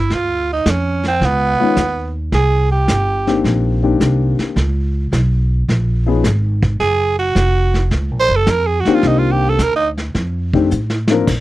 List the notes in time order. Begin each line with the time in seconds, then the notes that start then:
Already playing: E4
0.10 D2 F4, brush sweep, kick, snare
0.53 D#4
0.66 F2, kick, snare, hi-hat pedal
0.70 C#4
1.03 snare
1.08 C4
1.21 C#2, brush sweep, kick, snare
1.25 B3
1.60 D#3 G#3 B3 C#4 F4, muted upright bass stroke
1.77 D#2, kick, snare, hi-hat pedal
2.32 C2 G#4, brush sweep, kick, snare
2.72 G4
2.88 G1, kick, snare, hi-hat pedal
3.27 D#3 A#3 C4 D4 G4, snare
3.44 A#1, brush sweep, kick, snare
3.83 D#3 A#3 C4 D4 G4
4.00 C2, kick, snare, hi-hat pedal
4.39 muted upright bass stroke, snare
4.56 C#2, brush sweep, kick, snare
5.12 B1, kick, snare, hi-hat pedal
5.69 A#1, brush sweep, kick, snare
6.06 F3 B3 C#4 D#4 G#4
6.24 G#1, kick, snare, hi-hat pedal
6.63 kick, snare
6.80 F#1 G#4, brush sweep, kick, snare
7.19 F#4
7.35 F1, kick, snare, hi-hat pedal
7.74 snare
7.91 C#2, brush sweep, kick, snare
8.11 A#1
8.20 C5
8.29 F#1
8.36 A4
8.47 F2, kick, snare, hi-hat pedal
8.51 A#4
8.66 G#4
8.80 F#4
8.85 D#3 A#3 C4 D4 G4, muted upright bass stroke, snare
8.95 F4
9.03 C2, brush sweep, kick, snare
9.07 D#4
9.18 F4
9.32 G4
9.49 A4
9.59 D2, kick, snare, hi-hat pedal
9.63 A#4
9.76 D#4
9.97 snare
10.15 F2, brush sweep, kick, snare
10.53 D#3 A3 C4 D4 G4, kick
10.71 A2, hi-hat pedal
10.90 snare
11.08 F3 A#3 C4 D4 A#4, snare
11.27 A#2, brush sweep, kick, snare, crash